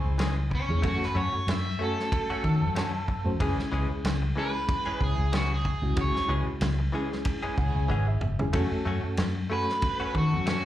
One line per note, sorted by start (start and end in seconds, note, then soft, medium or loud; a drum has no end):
0.00 0.26 G#3 medium
0.00 0.27 C#4 medium
0.00 0.27 E4 medium
0.00 0.37 E4 medium
0.00 0.27 G#4 medium
0.00 0.37 G#4 medium
0.00 0.37 C5 medium
0.04 0.60 C#2 medium
0.18 0.36 E3 medium
0.18 0.37 G#3 medium
0.18 0.36 C#4 medium
0.18 0.35 G#4 medium
0.18 snare loud
0.18 ride bell medium
0.37 muted clean electric guitar stroke soft
0.50 muted clean electric guitar stroke soft
0.50 kick medium
0.55 0.84 C#4 medium
0.69 0.83 E2 medium
0.69 0.81 G#3 medium
0.69 0.81 C#4 medium
0.69 0.81 E4 medium
0.69 0.81 G#4 medium
0.82 0.99 F#2 loud
0.82 1.01 A3 medium
0.82 1.62 A3 medium
0.82 1.48 C#4 medium
0.82 1.01 C#4 medium
0.82 1.63 C#4 medium
0.82 1.48 F#4 medium
0.82 1.62 F#4 medium
0.82 0.99 F#4 medium
0.82 1.48 A4 medium
0.82 1.63 A4 medium
0.82 kick loud
0.82 ride bell medium
0.87 1.03 F#4 medium
1.01 muted clean electric guitar stroke soft
1.01 muted fingered electric bass stroke soft
1.01 snare soft
1.05 1.17 B4 medium
1.15 1.31 F#2 medium
1.15 1.33 A3 medium
1.15 1.33 C#4 medium
1.15 1.32 F#4 medium
1.15 1.48 C#5 medium
1.32 muted fingered electric bass stroke soft
1.32 muted clean electric guitar stroke soft
1.47 1.75 F#2 loud
1.47 snare loud
1.47 ride bell medium
1.51 1.81 E5 medium
1.65 muted clean electric guitar stroke soft
1.79 1.97 A3 medium
1.79 2.84 A3 medium
1.79 2.84 C#4 medium
1.79 1.98 C#4 medium
1.79 2.84 F#4 medium
1.79 1.96 F#4 medium
1.79 2.84 A4 medium
1.84 3.38 A4 medium
1.97 muted clean electric guitar stroke soft
1.97 snare soft
2.12 muted clean electric guitar stroke soft
2.12 kick loud
2.12 ride bell medium
2.30 2.43 A3 medium
2.30 2.44 C#4 medium
2.30 2.44 F#4 medium
2.43 2.63 D#3 medium
2.43 2.94 C#4 medium
2.43 2.94 F#4 medium
2.43 2.94 A4 medium
2.43 muted clean electric guitar stroke soft
2.43 kick medium
2.61 3.17 F#2 medium
2.75 2.94 A3 medium
2.75 2.94 C#4 medium
2.75 2.93 F#4 medium
2.75 snare loud
2.75 ride bell medium
2.94 muted clean electric guitar stroke soft
3.08 muted clean electric guitar stroke soft
3.08 kick medium
3.25 3.40 F#2 medium
3.25 3.37 A3 medium
3.25 3.37 C#4 medium
3.25 3.37 F#4 medium
3.25 3.38 C5 medium
3.40 3.56 C#2 loud
3.40 3.58 E3 medium
3.40 4.19 G#3 medium
3.40 3.58 G#3 medium
3.40 4.19 C#4 medium
3.40 4.05 C#4 medium
3.40 3.58 C#4 medium
3.40 4.19 E4 medium
3.40 4.05 E4 medium
3.40 4.04 G#4 loud
3.40 4.19 G#4 medium
3.40 3.57 G#4 medium
3.40 kick loud
3.40 ride bell medium
3.58 muted fingered electric bass stroke soft
3.58 muted clean electric guitar stroke medium
3.58 snare soft
3.72 3.88 C#2 medium
3.72 3.90 E3 medium
3.72 3.90 G#3 medium
3.72 3.89 C#4 medium
3.72 3.88 G#4 medium
3.89 muted clean electric guitar stroke medium
4.04 4.32 C#2 loud
4.04 snare loud
4.04 ride bell medium
4.22 muted clean electric guitar stroke soft
4.36 4.54 E3 medium
4.36 5.40 G#3 medium
4.36 4.55 G#3 medium
4.36 5.41 C#4 medium
4.36 4.54 C#4 medium
4.36 5.41 E4 medium
4.36 5.41 G#4 medium
4.36 4.53 G#4 medium
4.36 5.00 B4 loud
4.54 muted clean electric guitar stroke soft
4.68 muted clean electric guitar stroke soft
4.68 kick loud
4.68 ride bell medium
4.86 5.00 E3 medium
4.86 5.00 G#3 medium
4.86 5.01 C#4 medium
4.86 5.01 G#4 medium
5.00 5.16 C#2 loud
5.00 5.51 C#4 medium
5.00 5.51 E4 medium
5.00 5.51 G#4 medium
5.00 5.34 G#4 medium
5.00 muted clean electric guitar stroke soft
5.00 kick medium
5.18 5.74 C#2 medium
5.33 5.51 E3 medium
5.33 5.51 G#3 medium
5.33 5.50 C#4 medium
5.33 5.52 F#4 medium
5.33 5.50 G#4 medium
5.33 snare medium
5.33 ride bell medium
5.51 5.98 G#4 medium
5.51 muted clean electric guitar stroke soft
5.65 muted clean electric guitar stroke soft
5.65 kick medium
5.82 5.95 C#2 medium
5.82 5.94 G#3 medium
5.82 5.94 C#4 medium
5.82 5.95 E4 medium
5.82 5.95 F#4 medium
5.96 6.12 C#2 loud
5.96 6.76 G#3 medium
5.96 6.76 C#4 medium
5.96 6.62 C#4 medium
5.96 6.76 E4 medium
5.96 6.62 E4 medium
5.96 6.76 F#4 medium
5.96 6.62 G#4 medium
5.96 kick loud
5.96 ride bell medium
6.01 6.30 C#5 medium
6.14 muted fingered electric bass stroke soft
6.14 muted clean electric guitar stroke soft
6.14 snare soft
6.29 6.44 C#2 medium
6.29 6.47 E3 medium
6.29 6.47 G#3 medium
6.29 6.46 C#4 medium
6.29 6.46 G#4 medium
6.47 muted fingered electric bass stroke soft
6.47 muted clean electric guitar stroke medium
6.61 6.89 C#2 loud
6.61 snare loud
6.61 ride bell medium
6.79 muted clean electric guitar stroke soft
6.92 7.11 E3 medium
6.92 7.11 G#3 medium
6.92 7.97 G#3 medium
6.92 7.98 C#4 medium
6.92 7.10 C#4 medium
6.92 7.98 E4 medium
6.92 7.98 G#4 loud
6.92 7.09 G#4 medium
7.11 muted clean electric guitar stroke soft
7.11 snare soft
7.25 muted clean electric guitar stroke soft
7.25 kick loud
7.25 ride bell medium
7.43 7.55 E3 medium
7.43 7.56 G#3 medium
7.43 7.56 C#4 medium
7.43 7.57 G#4 medium
7.57 7.73 C#2 medium
7.57 8.08 C#4 medium
7.57 8.08 E4 medium
7.57 8.08 G#4 loud
7.57 7.75 F#5 medium
7.57 muted clean electric guitar stroke soft
7.57 kick medium
7.75 7.88 C#2 medium
7.75 7.89 G#5 medium
7.88 8.19 G#1 medium
7.88 8.07 E3 medium
7.88 8.07 G#3 medium
7.88 8.07 C#4 medium
7.88 8.06 G#4 medium
7.88 8.07 F#5 medium
7.88 kick medium
8.07 8.51 E5 medium
8.07 muted clean electric guitar stroke soft
8.21 8.55 F#1 medium
8.21 muted clean electric guitar stroke soft
8.21 mid tom medium
8.39 8.51 G#3 medium
8.39 8.51 C#4 medium
8.39 8.52 E4 medium
8.39 8.52 G#4 medium
8.39 floor tom medium
8.53 8.69 F#2 medium
8.53 8.72 A3 medium
8.53 9.33 A3 medium
8.53 9.33 C#4 medium
8.53 8.72 C#4 medium
8.53 9.19 C#4 medium
8.53 9.19 F#4 medium
8.53 9.33 F#4 medium
8.53 8.70 F#4 medium
8.53 9.33 A4 medium
8.53 9.19 A4 medium
8.53 kick loud
8.53 ride bell medium
8.71 muted clean electric guitar stroke soft
8.71 muted fingered electric bass stroke soft
8.85 9.01 F#2 medium
8.85 9.04 A3 medium
8.85 9.04 C#4 medium
8.85 9.02 F#4 medium
9.04 muted fingered electric bass stroke soft
9.04 muted clean electric guitar stroke soft
9.17 9.46 F#2 loud
9.17 snare loud
9.17 ride bell medium
9.35 muted clean electric guitar stroke soft
9.50 9.68 A3 medium
9.50 10.54 A3 medium
9.50 10.55 C#4 medium
9.50 9.68 C#4 medium
9.50 10.55 F#4 medium
9.50 9.66 F#4 medium
9.50 10.55 A4 medium
9.50 10.14 B4 loud
9.67 muted clean electric guitar stroke soft
9.67 snare soft
9.82 muted clean electric guitar stroke soft
9.82 kick loud
9.82 ride bell medium
10.00 10.14 A3 medium
10.00 10.14 C#4 medium
10.00 10.15 F#4 medium
10.15 10.33 D#3 loud
10.15 10.65 C#4 medium
10.15 10.65 F#4 medium
10.15 10.48 F#4 medium
10.15 10.65 A4 medium
10.15 muted clean electric guitar stroke soft
10.15 kick medium
10.32 10.65 F#2 medium
10.46 10.64 A3 medium
10.46 10.65 C#4 medium
10.46 10.63 F#4 medium
10.46 10.65 F#4 medium
10.46 snare loud
10.46 ride bell medium